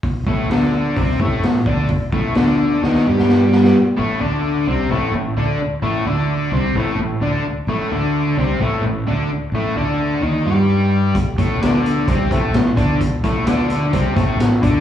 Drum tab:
HH |o---o---o---o---|o---o-----------|----------------|----------------|
SD |----o-------o---|----o---oo-oo-oo|----------------|----------------|
BD |o-o-----o-o---o-|o-o-------------|----------------|----------------|

HH |----------------|----------------|x-x-x-x-x-x-x-x-|x-x-x-x-x-x-x-x-|
SD |----------------|----------------|----o-------o---|----o-o-----o---|
BD |----------------|----------------|o-o-----o-o---o-|o-o-----o-o---o-|